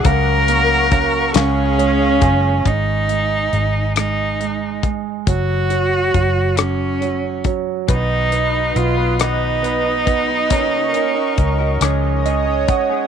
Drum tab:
HH |xxxxxx|xxxxxx|xxxxxx|xxxxxx|
SD |---o--|---r--|---r--|---r--|
BD |o-o--o|o----o|o-o--o|o----o|

HH |xxxxxx|
SD |---r--|
BD |o-o--o|